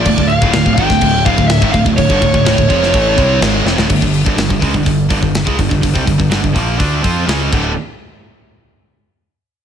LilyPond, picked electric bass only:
\new Staff \with { instrumentName = "Picked electric bass" } { \clef bass \time 4/4 \key g \dorian \tempo 4 = 124 d,,16 d,,8 d,,16 d,,16 d,,16 gis,,16 d,,16 d,,8 d,,16 d,,8 gis,,16 d,,16 d,,16 | d,,16 g,,16 d,,16 d,,16 d,,16 d,,16 f,,8 a,,8 c,8 gis,,8 f,,16 d,,16 | g,,16 g,,8 g,,16 g,,16 g,,16 cis,16 g,,16 g,,8 g,,16 g,,8 cis,16 g,,16 g,,16 | g,,16 c,16 g,,16 g,,16 g,,16 g,,16 bes,,8 d,8 f,8 cis,8 d,,8 |
r1 | }